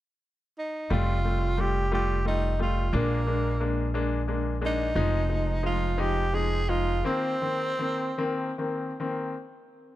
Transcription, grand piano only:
0.90 G3 A3 F4
1.25 G3 A3 F4
1.58 G3 A3 F4
1.92 G3 A3 F4
2.25 G3 A3 F4
2.59 G3 A3 F4
2.93 G#3 A#3 D4
3.26 G#3 A#3 D4
3.60 G#3 A#3 D4
3.94 G#3 A#3 D4
4.28 G#3 A#3 D4
4.61 G#3 A#3 D4
4.95 F3 G#3 D#4
5.29 F3 G#3 D#4
5.63 F3 G#3 D#4
5.98 F3 G#3 D#4
6.33 F3 G#3 D#4
6.69 F3 G#3 D#4
7.04 D#3 A#3 C4
7.41 D#3 A#3 C4
7.79 D#3 A#3 C4
8.18 D#3 A#3 C4
8.58 D#3 A#3 C4
9.00 D#3 A#3 C4

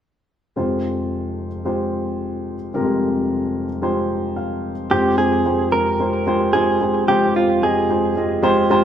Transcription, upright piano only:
0.56 F1 F2 G#3 F4 G4 C5
1.65 G#3 F4 G4 C5
2.74 F1 F2 G3 F4 G4 A#4
2.80 G#3
3.82 G#3 F4 G4 C5
4.36 F5
4.90 F1 F2 G#3 F4 G4 C5
5.17 G#3 F4 C5
5.45 G#3 F4 G4 C5
5.72 G#3 F4 G4 A#4
5.99 G#3 F4 G4 C5
6.27 G#3 F4 G4 C5
6.53 G#3 F4 G4 C5
6.80 G#3 F4 G4 C5
7.08 F1 F2 G#3 F4 G4 C5
7.35 G#3 F4 G4 C5
7.63 G#3 F4 G4 D#5
7.89 G#3 F4 G4 C5
8.16 G#3 F4 G4 D#5
8.43 G#3 F4 G4 C5
8.70 G#3 F4 G4 C5

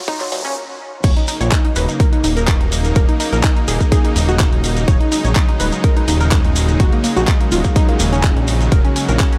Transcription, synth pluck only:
0.08 D#4
0.21 F#3
0.32 F#3
0.45 C#4
1.04 C#5
1.17 D#4
1.28 D#4
1.41 C#5
1.52 D#4
1.65 D#4
1.76 B4
1.89 D#4
2.00 A#4
2.13 D#4
2.24 D#4
2.37 A#4
2.96 A#4
3.09 D#4
3.20 D#4
3.33 A#4
3.44 D#4
3.57 D#4
3.68 G#4
3.81 D#4
3.92 G#4
4.05 D#4
4.16 D#4
4.29 F#4
4.88 C#5
5.01 D#4
5.12 D#4
5.25 C#5
5.36 D#4
5.49 D#4
5.60 B4
5.73 D#4
5.84 A#4
5.97 D#4
6.08 D#4
6.21 A#4
6.80 F#4
6.93 A#3
7.04 A#3
7.17 F#4
7.28 A#3
7.41 A#3
7.52 F4
7.65 A#3
7.76 D#4
7.89 A#3
8.00 A#3
8.13 C#4
8.72 A#4
8.85 C#4
8.96 C#4
9.09 A#4
9.20 C#4
9.33 C#4

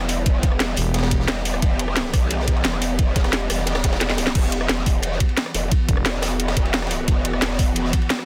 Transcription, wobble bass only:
Already playing: E1
1.28 E1
1.62 E1
2.14 B1
2.65 E1
3.50 E1
3.84 E1
4.35 E1
4.69 E1
5.54 E1
6.06 E1
6.57 E1
7.08 E1
7.42 E1

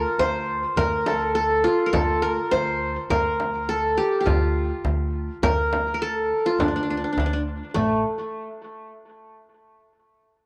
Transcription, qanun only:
Already playing: F4 A#4
0.19 C5
0.77 A#4
1.06 A4
1.35 A4
1.64 F4
1.86 A#4
1.93 A4
2.22 A#4
2.51 C5
3.10 A#4
3.69 A4
3.97 G4
4.21 G4
4.26 F4
5.43 A#4
5.94 A#4
6.02 A4
6.46 F4
6.60 D4
6.68 D4
6.76 D4
6.83 D4
6.90 D4
6.97 D4
7.04 D4
7.13 D4
7.20 D4
7.26 D4
7.33 D4
7.74 A3

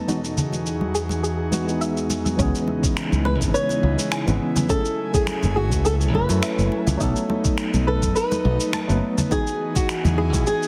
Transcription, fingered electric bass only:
2.39 C#2
3.12 C#2
3.41 G#1
3.83 C#2
4.28 G#1
5.43 F#1
5.72 C#2
6.14 F#1
6.29 F#2
6.58 F#1
6.87 C#2
7.00 B1
7.74 B1
8.03 F#1
8.45 B1
8.89 F#1
10.04 E2
10.34 B1

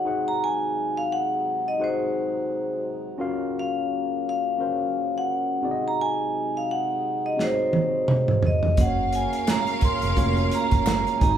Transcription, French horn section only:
Already playing: F#3
0.09 C3 G#3 D#4
3.21 C#3 A#3 C#4
5.64 C3 G#3 D#4
8.79 C#3 A#3 C#4
11.23 C3 G#3 D#4

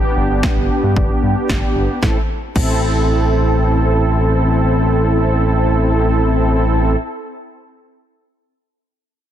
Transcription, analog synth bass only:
0.17 G1
0.30 G1
0.57 G1
0.83 G2
0.96 G1
1.23 G2
1.49 G1
1.76 G1
2.03 A1
2.56 A1

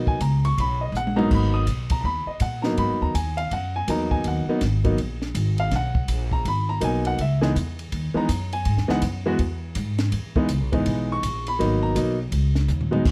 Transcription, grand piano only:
Already playing: F#3 A#3 B3 D#4
0.08 G#5
0.21 A#5
0.45 C#6
0.60 B5
0.81 D#5
0.97 F#5
1.16 G#2 F#3 A#3 B3 D#4 A#5
1.34 B5
1.54 D#6
1.91 A#5
2.01 A#5
2.05 B5
2.27 D#5
2.42 F#5
2.62 F#3 A#3 B3 D#4 A#5
2.78 B5
3.02 A#5
3.15 G#5
3.37 F5
3.53 F#5
3.76 G#5
3.88 F#3 A#3 B3 D#4 A#5
4.11 G#5
4.28 F#5
4.49 F#3 A#3 B3 D#4
4.84 F#3 A#3 B3 D#4
5.60 F5
5.76 F#5
6.33 A#5
6.48 B5
6.69 A#5
6.80 F#3 A#3 B3 D#4 G#5
7.07 F#5
7.21 E5
7.41 E3 G#3 B3 D#4 G#4
8.14 E3 G#3 B3 D#4 A#5
8.53 G#5
8.88 E3 G#3 B3 D#4 F#5
9.26 E3 G#3 B3 F#4
10.36 E3 G#3 B3 D#4
10.72 E3 G#3 B3 D#4
11.12 C#6
11.48 B5
11.59 F#3 A#3 B3 D#4
11.83 A#5
11.95 F#3 A#3 B3 D#4
12.91 F#3 G#3 B3 D#4

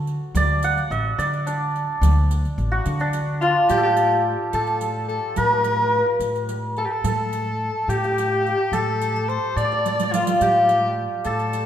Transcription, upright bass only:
Already playing: D3
0.35 D2
0.90 A1
1.19 D3
2.02 D2
2.58 A1
2.86 D3
3.70 A2
4.54 A2
5.38 A2
6.20 A2
7.04 A2
7.88 A2
8.72 A2
9.56 A2
10.41 A2
11.25 A2

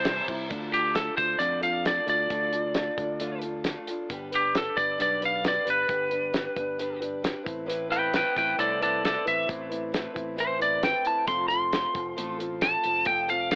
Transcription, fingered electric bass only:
Already playing: C2
0.28 C2
0.51 D2
1.18 D2
1.40 F2
2.07 D2
2.31 D2
2.98 D2
4.10 G1
4.78 G1
5.00 B1
5.67 G1
5.89 G1
6.57 G1
7.46 A1
8.37 A1
8.58 C2
9.27 A1
9.49 A1
10.17 A1
11.28 F1
11.95 F1
12.18 A1
12.85 F1
13.06 F1

